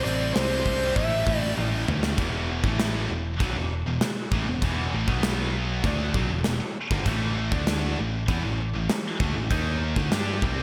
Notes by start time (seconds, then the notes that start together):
Already playing: C3 E3 G3 C4 E4
0.04 A1 C3 G3 C4 D5, open hi-hat
0.34 C2 C3 G3 C4 C5, snare, open hi-hat
0.65 C2 C3 E3 G3 C4 E4, kick, open hi-hat
0.96 A1 A2 E3 A3 C#4 E4 E5, kick, open hi-hat
1.27 A1 A2 E3 A3, kick, open hi-hat
1.40 D5
1.57 A1 A2 E3 A3, high tom
1.88 D2 A2 E3 A3 C#4 E4, mid tom
2.03 snare
2.18 E1 E2 B2 E3, kick, crash
2.64 A1 A2 E3 A3, kick
2.79 snare, crash
3.10 E1 E2 B2
3.40 B1 B2 F#3, kick, crash
3.56 E1 E2 B2
3.86 E1 E2 B2
4.01 muted picked electric bass stroke, muted overdriven electric guitar stroke, muted distorted electric guitar stroke, snare, crash
4.32 A1 A2 E3, kick
4.47 E1 E2 B2
4.62 E1 E2 B2 E3, kick, crash
4.93 A1 A2 E3
5.07 B1 B2 F#3 B3, kick
5.23 snare, crash
5.84 D2 D3 A3 D4, kick, crash
6.14 B1 B2 F#3, kick
6.30 E1 E2 B2
6.44 E1 E2 B2, snare, crash
6.60 muted distorted electric guitar stroke, muted overdriven electric guitar stroke, muted picked electric bass stroke
6.91 G1 G2 D3, kick
7.05 A1 A2 E3 A3, kick, crash
7.52 D2 D3 A3 D4, kick
7.67 snare, crash
7.98 A1 A2 E3
8.28 E2 E3 B3, kick, crash
8.44 A1 A2 E3
8.75 A1 A2 E3
8.89 muted picked electric bass stroke, muted distorted electric guitar stroke, muted overdriven electric guitar stroke, snare, crash
9.20 D2 D3 A3, kick
9.36 A1 A2 E3
9.50 D#2 D#3 A#3 D#4, kick, crash
9.96 D2 D3 A3, kick
10.11 G2 G3 D4 G4, snare, crash
10.42 C2 C3 G3 C4, kick